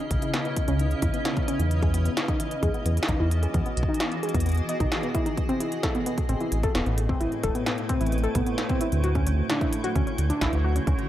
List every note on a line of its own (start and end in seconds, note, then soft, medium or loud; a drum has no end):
0.00 1.71 C#3 medium
0.00 3.18 C#4 medium
0.00 2.54 E4 medium
0.00 3.18 B4 medium
0.00 6.84 D#5 medium
0.11 0.18 B1 medium
0.11 kick loud
0.11 closed hi-hat medium
0.22 0.31 E4 medium
0.22 closed hi-hat medium
0.34 0.43 B3 medium
0.34 snare loud
0.34 closed hi-hat medium
0.45 0.54 B3 medium
0.45 closed hi-hat soft
0.56 kick loud
0.56 closed hi-hat medium
0.68 0.95 C#2 medium
0.68 0.77 C#4 loud
0.68 closed hi-hat medium
0.79 0.89 D#4 medium
0.79 closed hi-hat medium
0.91 closed hi-hat soft
1.02 1.09 E2 medium
1.02 1.12 E4 medium
1.02 kick loud
1.02 closed hi-hat medium
1.14 1.23 B3 medium
1.14 closed hi-hat medium
1.25 1.34 B3 medium
1.25 snare loud
1.25 closed hi-hat medium
1.37 kick loud
1.37 closed hi-hat soft
1.48 1.57 C#4 loud
1.48 closed hi-hat medium
1.60 2.10 E2 loud
1.60 1.69 D#4 medium
1.60 closed hi-hat medium
1.71 5.38 E3 medium
1.71 closed hi-hat medium
1.82 6.84 F#4 medium
1.82 1.92 G#4 medium
1.82 kick loud
1.82 closed hi-hat soft
1.94 2.03 B3 medium
1.94 closed hi-hat medium
1.99 5.38 B3 medium
2.05 2.15 B3 medium
2.05 closed hi-hat medium
2.17 snare loud
2.17 closed hi-hat medium
2.28 2.37 D#4 loud
2.28 kick loud
2.28 closed hi-hat soft
2.40 2.49 E4 medium
2.40 closed hi-hat medium
2.51 closed hi-hat medium
2.63 2.70 E2 medium
2.63 2.72 G#4 medium
2.63 kick loud
2.63 closed hi-hat medium
2.74 2.83 B3 medium
2.74 closed hi-hat soft
2.86 2.99 E2 medium
2.86 2.95 B3 medium
2.86 closed hi-hat medium
2.97 closed hi-hat medium
3.03 6.84 G#4 medium
3.03 snare loud
3.08 3.15 B1 medium
3.08 3.18 D#4 loud
3.08 kick loud
3.08 closed hi-hat soft
3.20 3.47 E2 medium
3.20 3.29 E4 medium
3.31 closed hi-hat medium
3.43 3.52 G#4 medium
3.43 closed hi-hat soft
3.54 3.61 E2 medium
3.54 3.63 B3 medium
3.54 kick loud
3.54 closed hi-hat soft
3.66 3.75 B3 medium
3.66 closed hi-hat soft
3.77 3.84 B1 medium
3.77 closed hi-hat medium
3.83 kick loud
3.89 3.98 D#4 loud
3.94 closed hi-hat medium
4.00 4.09 E4 medium
4.00 snare loud
4.00 closed hi-hat soft
4.12 closed hi-hat soft
4.23 4.32 G#4 medium
4.23 closed hi-hat soft
4.29 closed hi-hat medium
4.34 4.62 E2 medium
4.34 4.44 B3 medium
4.34 kick loud
4.34 closed hi-hat medium
4.40 closed hi-hat medium
4.46 4.55 B3 medium
4.46 closed hi-hat soft
4.49 closed hi-hat soft
4.52 closed hi-hat soft
4.54 closed hi-hat soft
4.57 closed hi-hat soft
4.69 4.78 D#5 medium
4.69 closed hi-hat medium
4.80 4.87 B1 medium
4.80 4.86 D#4 loud
4.80 kick loud
4.80 closed hi-hat soft
4.92 snare loud
4.92 closed hi-hat soft
5.03 5.09 B3 medium
5.03 closed hi-hat soft
5.15 5.20 E4 loud
5.15 kick loud
5.15 closed hi-hat medium
5.26 5.35 D#4 medium
5.26 closed hi-hat soft
5.37 9.04 A2 medium
5.37 kick loud
5.37 closed hi-hat soft
5.49 5.58 C4 loud
5.49 closed hi-hat soft
5.60 5.70 E4 medium
5.60 closed hi-hat medium
5.71 11.09 A3 medium
5.71 closed hi-hat soft
5.83 5.92 A4 loud
5.83 kick loud
5.83 snare loud
5.83 closed hi-hat soft
5.88 11.09 E4 medium
5.95 6.04 B3 medium
5.95 closed hi-hat soft
6.00 9.80 B4 medium
6.06 6.15 B3 medium
6.06 closed hi-hat medium
6.18 kick loud
6.18 closed hi-hat soft
6.29 6.36 A1 medium
6.29 6.38 C4 loud
6.29 closed hi-hat soft
6.41 6.50 E4 medium
6.41 closed hi-hat soft
6.52 6.66 A1 medium
6.52 closed hi-hat medium
6.63 6.73 A4 loud
6.63 kick loud
6.63 closed hi-hat soft
6.75 6.82 E1 medium
6.75 6.84 B3 medium
6.75 snare loud
6.75 closed hi-hat soft
6.86 7.13 A1 medium
6.86 6.95 B3 medium
6.86 closed hi-hat soft
6.98 closed hi-hat medium
7.02 9.04 C5 medium
7.09 7.18 C4 loud
7.09 kick loud
7.20 7.28 A1 medium
7.20 7.30 E4 medium
7.20 closed hi-hat soft
7.32 closed hi-hat soft
7.43 7.51 E1 medium
7.43 7.53 A4 loud
7.43 kick loud
7.43 closed hi-hat medium
7.55 7.64 B3 medium
7.55 closed hi-hat soft
7.66 7.76 B3 medium
7.66 snare loud
7.66 closed hi-hat soft
7.78 closed hi-hat soft
7.89 7.98 C4 loud
7.89 kick loud
7.89 closed hi-hat medium
8.01 8.28 A1 medium
8.01 8.10 E4 medium
8.01 closed hi-hat soft
8.06 closed hi-hat soft
8.12 closed hi-hat soft
8.18 closed hi-hat soft
8.24 8.33 A4 loud
8.24 closed hi-hat soft
8.35 8.42 C2 medium
8.35 8.44 B3 medium
8.35 kick loud
8.35 closed hi-hat medium
8.46 8.56 B3 medium
8.46 closed hi-hat soft
8.58 snare loud
8.58 closed hi-hat soft
8.69 8.79 C4 loud
8.69 kick loud
8.69 closed hi-hat soft
8.81 8.90 E4 medium
8.81 closed hi-hat medium
8.92 9.42 D2 loud
8.92 closed hi-hat soft
9.04 11.09 D3 medium
9.04 9.13 F#4 loud
9.04 closed hi-hat soft
9.15 9.25 C#4 medium
9.15 kick loud
9.15 closed hi-hat soft
9.27 9.36 C#4 medium
9.27 closed hi-hat medium
9.46 9.59 D4 loud
9.46 11.09 F#4 medium
9.46 snare loud
9.46 closed hi-hat soft
9.61 9.70 E4 medium
9.61 kick loud
9.61 closed hi-hat soft
9.70 11.09 C#5 medium
9.70 closed hi-hat medium
9.84 9.93 F#4 loud
9.84 closed hi-hat soft
9.95 10.02 D2 medium
9.95 10.05 C#4 medium
9.95 kick medium
9.95 closed hi-hat medium
10.07 10.16 C#4 medium
10.07 closed hi-hat soft
10.18 10.32 D2 medium
10.18 closed hi-hat medium
10.30 10.39 D4 loud
10.30 closed hi-hat soft
10.41 10.48 A1 medium
10.41 10.51 E4 medium
10.41 kick medium
10.41 snare loud
10.41 closed hi-hat soft
10.53 10.80 D2 medium
10.53 closed hi-hat soft
10.64 10.73 F#4 loud
10.76 10.85 C#4 medium
10.76 closed hi-hat soft
10.87 10.94 D2 medium
10.87 10.96 C#4 medium
10.87 kick loud
10.87 closed hi-hat medium
10.99 closed hi-hat soft